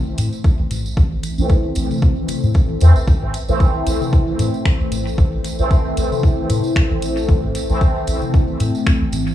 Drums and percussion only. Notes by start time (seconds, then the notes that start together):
0.18 closed hi-hat, tambourine
0.33 tambourine
0.44 kick, tambourine
0.71 closed hi-hat, mid tom, tambourine
0.86 tambourine
0.97 kick, tambourine
1.23 closed hi-hat, tambourine
1.38 tambourine
1.49 kick, tambourine
1.75 closed hi-hat, tambourine
1.91 high tom, tambourine
2.02 kick, tambourine
2.28 closed hi-hat, high tom, tambourine
2.43 tambourine
2.54 kick, tambourine
2.80 closed hi-hat, tambourine
2.96 tambourine
3.08 kick, tambourine
3.22 mid tom
3.34 closed hi-hat, tambourine
3.48 tambourine
3.60 kick, tambourine
3.87 closed hi-hat, tambourine
4.01 high tom, tambourine
4.13 kick, tambourine
4.39 closed hi-hat, tambourine
4.54 tambourine
4.65 finger snap, kick, tambourine
4.92 closed hi-hat, mid tom, tambourine
5.07 tambourine
5.18 kick, tambourine
5.44 closed hi-hat, tambourine
5.59 tambourine
5.71 kick, tambourine
5.97 closed hi-hat, tambourine
6.12 high tom, tambourine
6.23 kick, tambourine
6.50 closed hi-hat, high tom, tambourine
6.64 tambourine
6.76 finger snap, kick, tambourine
7.02 closed hi-hat, tambourine
7.17 tambourine
7.29 kick, tambourine
7.43 mid tom
7.55 closed hi-hat, tambourine
7.70 tambourine
7.81 kick, tambourine
8.07 closed hi-hat, tambourine
8.22 high tom, tambourine
8.34 kick, tambourine
8.60 closed hi-hat, tambourine
8.75 tambourine
8.86 finger snap, kick, tambourine
9.12 closed hi-hat, mid tom, tambourine
9.27 tambourine